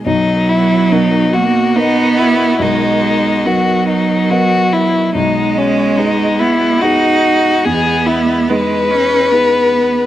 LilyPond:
<<
  \new Staff \with { instrumentName = "String section" } { \time 3/4 \key b \major \tempo 4 = 71 << { <ais' dis''>2.~ | <ais' dis''>2. | <gis dis''>2.~ | <gis dis''>2. | } \\ { fis'2.~ | fis'2. | fis'2. | e2. | } >> }
  \new Staff \with { instrumentName = "Violin" } { \time 3/4 \key b \major dis'8 e'8 dis'8 fis'8 dis'8 e'8 | dis'4 fis'8 dis'8 fis'8 e'8 | dis'8 cis'8 dis'8 e'8 fis'4 | gis'8 e'8 b'2 | }
  \new Staff \with { instrumentName = "Grand piano" } { \time 3/4 \key b \major b,,4 <b, dis' ais'>4 <b ais' dis''>4 | b,,4 <b dis' ais'>4 <b ais' dis''>4 | b,,4 <b gis' dis''>4 <b dis' gis'>4 | e,4 <b dis' gis'>4 <b dis' gis'>4 | }
  \new Staff \with { instrumentName = "Cello" } { \time 3/4 \key b \major fis4. ais8 b4 | gis4 fis2 | gis4. b8 dis'4 | b4 gis8 cis'8 b4 | }
>>